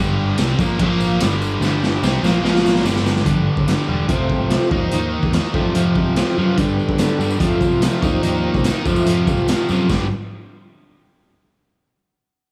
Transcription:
Already playing: fingered electric bass G1, overdriven electric guitar G2 D3, tonewheel organ D4 G4 B4 G5
0.00 overdriven electric guitar G3
0.38 fingered electric bass C2, overdriven electric guitar C3 G3 C4, snare, ride bell, tambourine
0.59 fingered electric bass A#1, overdriven electric guitar A#2 F3 A#3, kick, tambourine
0.79 fingered electric bass A#1, overdriven electric guitar A#2 F3 A#3, tonewheel organ F4 A#4 F5, kick, ride bell, tambourine
1.00 tambourine
1.20 fingered electric bass G1, overdriven electric guitar G2 D3 G3, tonewheel organ D4 G4 B4 G5, snare, ride bell, tambourine
1.42 tambourine
1.61 fingered electric bass G1, overdriven electric guitar G2 D3 G3, snare, tambourine
1.83 snare, tambourine
2.03 fingered electric bass C2, overdriven electric guitar C3 G3 C4, snare, tambourine
2.23 fingered electric bass A#1, overdriven electric guitar A#2 F3 A#3, snare, tambourine
2.43 fingered electric bass A#1, overdriven electric guitar A#2 F3 A#3, tonewheel organ F4 A#4 F5, snare, tambourine
2.55 snare
2.66 snare, tambourine
2.75 snare
2.84 fingered electric bass G1, overdriven electric guitar G2 D3 G3, tonewheel organ D4 G4 B4 G5, snare, tambourine
2.96 snare
3.06 snare, tambourine
3.16 snare
3.25 fingered electric bass G1, overdriven electric guitar G2 D3 G3, tonewheel organ D3 G3 B3, kick, closed hi-hat
3.57 fingered electric bass G1, kick
3.67 overdriven electric guitar G2 D3 G3, snare, closed hi-hat
3.79 snare
3.87 fingered electric bass E1, overdriven electric guitar G2 D3 G3
3.92 tonewheel organ D5
4.07 fingered electric bass F1, overdriven electric guitar F2 C3 F3, tonewheel organ F3 A3 C4, kick, closed hi-hat
4.13 tonewheel organ C5
4.30 tonewheel organ G4, kick
4.40 fingered electric bass C2
4.50 overdriven electric guitar F2 C3 F3, tonewheel organ C5, snare, closed hi-hat
4.71 fingered electric bass D#2, overdriven electric guitar D#3 A#3 D#4, tonewheel organ F3 G3 D#4 C5 D#5, kick
4.91 fingered electric bass D#2, overdriven electric guitar D#3 A#3 D#4, closed hi-hat
5.23 fingered electric bass E2, kick
5.33 overdriven electric guitar D#3 A#3 D#4, snare, closed hi-hat
5.54 fingered electric bass F2, overdriven electric guitar F2 C3 F3, tonewheel organ F3 A3 C4 D5, kick
5.75 overdriven electric guitar F2 C3 F3, fingered electric bass F2, tonewheel organ C5, closed hi-hat
5.95 tonewheel organ G4, kick
6.07 fingered electric bass C2
6.16 overdriven electric guitar F2 C3 F3, tonewheel organ C5, snare, closed hi-hat
6.37 overdriven electric guitar F2 C3 F3, fingered electric bass F#2, tonewheel organ G4 B4
6.57 overdriven electric guitar G2 D3 G3, fingered electric bass G2, tonewheel organ D3 G3 B3, kick, closed hi-hat
6.69 tambourine
6.79 tambourine
6.89 fingered electric bass G2, kick
6.98 overdriven electric guitar G2 D3 G3, tonewheel organ G#4 A4, snare, closed hi-hat, tambourine
7.10 tambourine
7.19 overdriven electric guitar G2 D3 G3, fingered electric bass G2, tambourine
7.31 tambourine
7.39 overdriven electric guitar F2 C3 F3, fingered electric bass F2, tonewheel organ F3 A3 C4, kick, closed hi-hat
7.52 tambourine
7.61 tonewheel organ F4, kick, tambourine
7.71 fingered electric bass C2, tambourine
7.81 overdriven electric guitar F2 C3 F3, tonewheel organ E4, snare, closed hi-hat, tambourine
8.02 fingered electric bass D#2, overdriven electric guitar D#3 A#3 D#4, tonewheel organ F3 G3 D#4, kick, tambourine
8.06 tonewheel organ C4
8.22 fingered electric bass D#2, overdriven electric guitar D#3 A#3 D#4, closed hi-hat, tambourine
8.34 tambourine
8.54 fingered electric bass C2, kick, tambourine
8.64 overdriven electric guitar D#3 A#3 D#4, snare, closed hi-hat, tambourine
8.86 overdriven electric guitar F2 C3 F3, fingered electric bass F2, tonewheel organ F3 A3 C4, kick, tambourine
8.96 tambourine
9.06 overdriven electric guitar F2 C3 F3, fingered electric bass F2, closed hi-hat, tambourine
9.27 kick, tambourine
9.37 fingered electric bass C2, tambourine
9.48 overdriven electric guitar F2 C3 F3, snare, closed hi-hat, tambourine
9.68 overdriven electric guitar F2 C3 F3, fingered electric bass F#2, tambourine
9.89 fingered electric bass G1, overdriven electric guitar G2 D3 G3, kick, snare, tambourine

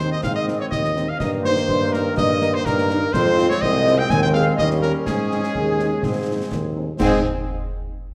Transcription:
Already playing: tuba D#2, trombone section D#3 C4
0.11 woodwind section D#5, flute section D#5, cornet D#5
0.23 tuba G#2, woodwind section F5, flute section F5, cornet F5, concert bass drum, snare
0.35 flute section D#5, cornet D#5, woodwind section D#5
0.47 french horn section G#3 C4 D#4, snare
0.59 flute section C#5, woodwind section C#5, cornet C#5
0.71 tuba D#2, cornet D#5, flute section D#5, woodwind section D#5, concert bass drum, snare
0.84 snare
0.96 french horn section G#3 C4 D#4, snare
1.07 flute section F5, woodwind section F5, cornet F5
1.18 tuba G2, trombone section D#3 A#3, flute section D#5, woodwind section D#5, cornet D#5, concert bass drum, snare, crash
1.43 french horn section A#3 D#4, woodwind section C5, flute section C5, cornet C5, snare
1.56 snare
1.68 tuba G2, concert bass drum
1.93 french horn section A#3 D#4, woodwind section A#4, cornet A#4, flute section A#4, snare
2.16 tuba G2, flute section D#5, woodwind section D#5, cornet D#5, concert bass drum, snare
2.41 french horn section A#3 D#4, snare
2.53 flute section C5, woodwind section C5, cornet C5
2.65 tuba G2, flute section A#4, cornet A#4, woodwind section A#4, concert bass drum, snare
2.78 snare
2.90 french horn section A#3 D#4, snare
3.13 tuba F2, trombone section G#3 C4, flute section C5, cornet C5, woodwind section C5, concert bass drum, snare, crash
3.38 french horn section G#3 C4 F4, snare
3.49 flute section C#5, woodwind section C#5, cornet C#5, snare
3.61 tuba C2, woodwind section D#5, flute section D#5, cornet D#5, concert bass drum
3.86 french horn section G#3 C4 F4, snare
3.97 flute section G5, woodwind section G5, cornet G5
4.09 tuba D#2, flute section G#5, cornet G#5, woodwind section G#5, concert bass drum, snare
4.20 flute section G5, woodwind section G5, cornet G5
4.33 french horn section G#3 C4 G#4, flute section F5, woodwind section F5, cornet F5, snare
4.57 tuba D#2, trombone section G3 C#4, flute section D#5, cornet D#5, woodwind section D#5, concert bass drum, snare
4.70 snare
4.80 french horn section A#3 C#4 G4, flute section A#4, woodwind section A#4, cornet A#4, snare
5.05 tuba G#2, trombone section G#3, flute section G#4, woodwind section G#4, cornet G#4, concert bass drum, snare, crash
5.30 french horn section G#3 C4 D#4, snare
5.43 snare
5.55 tuba D#2, concert bass drum
5.79 french horn section G#3 C4 D#4, snare
6.02 tuba G#2, trombone section C4, concert bass drum, snare
6.27 french horn section G#3 C4 D#4
6.51 tuba D#2, concert bass drum, snare
6.75 french horn section G#3 C4 D#4
6.98 tuba G#2, trombone section G#3 C4, french horn section G#3 C4 D#4, woodwind section G#4, cornet G#4, flute section G#5, concert bass drum, snare, crash

